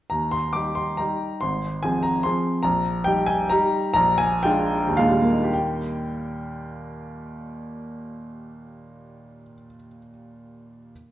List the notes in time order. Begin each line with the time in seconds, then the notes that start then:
0.10 D#2 A#5
0.31 C6
0.53 G3 D#4 G4 D6
0.75 C6
0.97 G3 D#4 G4 A#5
1.41 G#1 C6
1.83 F3 C4 G#4 G#5
2.03 A#5
2.23 F3 C4 G#4 C6
2.63 A#1 A#5
3.04 G3 D#4 G4 G5
3.26 G#5
3.50 G3 D#4 G4 A#5
3.93 A#1 A#5
4.18 G#5
4.43 G#3 D4 F4 G5
4.87 D#2
4.97 A#2 G#3 D4 F4 F5
5.10 G3
5.21 A#3
5.32 D#4
5.44 G4
5.53 G5